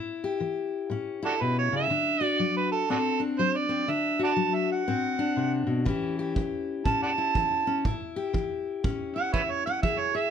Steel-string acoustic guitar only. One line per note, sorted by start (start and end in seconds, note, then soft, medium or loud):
0.00 0.38 A2 medium
0.00 1.21 E4 medium
0.24 1.89 G4 medium
0.40 0.87 E3 medium
0.90 1.36 A2 medium
0.90 1.88 C#4 medium
1.23 1.88 E4 medium
1.41 1.72 B2 medium
1.72 1.90 C#3 medium
1.90 2.36 D3 medium
1.90 3.19 D4 medium
2.21 4.18 F#4 medium
2.40 2.86 F#3 medium
2.89 3.35 A2 medium
2.89 3.68 C4 medium
3.20 3.86 D4 medium
3.39 3.85 F#3 medium
3.69 3.86 C4 medium
3.88 4.34 D3 medium
3.88 5.18 D4 medium
4.19 5.87 F#4 medium
4.36 4.83 F#3 medium
4.88 5.34 A2 medium
4.88 5.85 C4 medium
5.19 5.85 D4 medium
5.36 5.66 C3 medium
5.67 5.86 B2 medium
5.85 6.32 A2 medium
5.85 6.37 E3 medium
5.85 6.86 C#4 medium
5.85 7.17 E4 medium
5.85 6.19 G4 medium
6.19 7.84 G4 medium
6.38 6.83 E3 medium
6.86 7.32 A2 medium
6.86 7.66 C#4 medium
7.18 7.86 E4 medium
7.36 7.82 E3 medium
7.67 7.83 C#4 medium
7.85 8.31 A2 medium
7.85 9.15 E4 medium
8.16 9.82 G4 medium
8.33 8.80 E3 medium
8.84 9.30 A2 medium
8.84 9.65 C#4 medium
9.16 10.30 E4 medium
9.34 9.80 E3 medium
9.67 9.83 C#4 medium
9.83 10.29 E3 medium
9.83 10.14 G#4 medium
10.15 10.30 G#4 medium